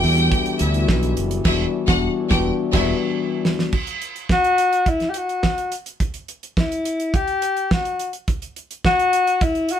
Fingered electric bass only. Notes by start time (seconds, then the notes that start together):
0.04 E2
0.61 D2
0.89 B1
1.18 F#1
1.45 E1
1.88 E1
2.31 E1
2.73 E1